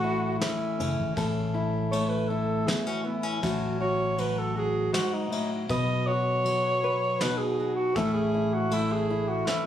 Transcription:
Already playing: fingered electric bass A1, steel-string acoustic guitar A2 A3 C#4, alto saxophone F#4
0.04 steel-string acoustic guitar E4
0.39 steel-string acoustic guitar E3 C#4, alto saxophone E4, snare, ride
0.79 fingered electric bass F#1, steel-string acoustic guitar C#4, ride
0.99 fingered electric bass G#1
1.16 fingered electric bass A1, steel-string acoustic guitar A2 A4, kick, ride
1.54 steel-string acoustic guitar E4
1.91 steel-string acoustic guitar A3, alto saxophone C#5, ride
2.09 alto saxophone B4
2.28 steel-string acoustic guitar E4, alto saxophone A4
2.67 steel-string acoustic guitar E3 B3, alto saxophone G#4, snare, ride
2.86 steel-string acoustic guitar C#4, alto saxophone F#4
3.04 steel-string acoustic guitar B3, alto saxophone E4
3.23 steel-string acoustic guitar C#4
3.42 fingered electric bass A1, steel-string acoustic guitar A2 F#3 C#4 F#4, kick, ride
3.81 steel-string acoustic guitar F#4, alto saxophone C#5
4.18 steel-string acoustic guitar F#3, alto saxophone B4, ride
4.38 alto saxophone A4
4.56 steel-string acoustic guitar F#4, alto saxophone G#4
4.93 steel-string acoustic guitar G#2, alto saxophone F#4, snare, ride
5.13 alto saxophone D#4
5.30 steel-string acoustic guitar A2, ride
5.69 fingered electric bass B1, steel-string acoustic guitar B2 B4, alto saxophone D#5, kick, ride
6.07 steel-string acoustic guitar F#4, alto saxophone C#5
6.45 steel-string acoustic guitar F#3, ride
6.84 steel-string acoustic guitar B4
7.21 steel-string acoustic guitar B2 D#4, alto saxophone B4, snare, ride
7.38 alto saxophone G#4
7.60 steel-string acoustic guitar F#4
7.76 alto saxophone F#4
7.96 fingered electric bass A1, steel-string acoustic guitar A2 A3 C#4 E4, alto saxophone A4, kick, ride
8.14 alto saxophone G#4
8.34 steel-string acoustic guitar E4
8.54 alto saxophone F#4
8.71 steel-string acoustic guitar A3, alto saxophone E4, ride
8.92 alto saxophone G#4
9.10 steel-string acoustic guitar E4
9.29 alto saxophone F#4
9.46 steel-string acoustic guitar E3 C#4, alto saxophone E4, snare

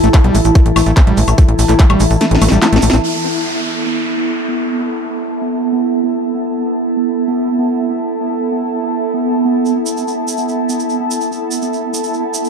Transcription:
Already playing: synth texture E3 E4, ambient pad E4 A4 E5 A5
0.03 analog synth bass A1, acid bass A3, closed hi-hat, shaker
0.14 acid bass A3, kick, clap, closed hi-hat, high woodblock, shaker
0.24 analog synth bass B1, acid bass G3, closed hi-hat
0.35 analog synth bass A1, acid bass A3, open hi-hat, shaker
0.44 analog synth bass A1, closed hi-hat, shaker
0.55 acid bass A3, kick, closed hi-hat, shaker
0.66 analog synth bass A1, closed hi-hat
0.76 analog synth bass A1, acid bass A3, open hi-hat, high woodblock, shaker
0.86 analog synth bass A1, acid bass A3, closed hi-hat, shaker
0.97 acid bass B3, kick, clap, closed hi-hat, shaker
1.07 analog synth bass A1, acid bass G3, closed hi-hat
1.17 analog synth bass A1, acid bass A3, open hi-hat, shaker
1.27 analog synth bass A1, closed hi-hat, high woodblock, shaker
1.38 acid bass A3, kick, closed hi-hat, shaker
1.48 analog synth bass A1, closed hi-hat
1.59 analog synth bass A1, open hi-hat, shaker
1.69 analog synth bass A1, acid bass A3, clap, closed hi-hat, shaker
1.79 acid bass A3, kick, clap, closed hi-hat, shaker
1.90 analog synth bass A1, acid bass G3, closed hi-hat, high woodblock
2.00 analog synth bass A1, acid bass A3, open hi-hat, shaker
2.11 analog synth bass A1, closed hi-hat, shaker
2.20 acid bass A3, snare, closed hi-hat, shaker
2.31 analog synth bass A1, snare, closed hi-hat
2.41 analog synth bass A1, acid bass A3, open hi-hat, high woodblock, shaker
2.48 analog synth bass A1, acid bass G3, snare, closed hi-hat, shaker
2.62 acid bass A3, snare, clap, closed hi-hat, shaker
2.73 analog synth bass A1, acid bass A3, snare, closed hi-hat
2.82 analog synth bass A1, acid bass A3, open hi-hat, shaker
2.90 analog synth bass A1, acid bass C4, snare, closed hi-hat, shaker
3.04 synth texture B3, ambient pad E4, crash, downlifter
3.10 ambient pad A4
3.84 ambient pad E5
4.03 ambient pad A5
9.66 shaker
9.86 shaker
9.97 shaker
10.08 shaker
10.28 shaker
10.37 shaker
10.48 shaker
10.69 shaker
10.80 shaker
10.90 shaker
11.11 shaker
11.21 shaker
11.32 shaker
11.51 shaker
11.62 shaker
11.73 shaker
11.94 shaker
12.04 shaker
12.14 shaker
12.34 shaker
12.44 shaker

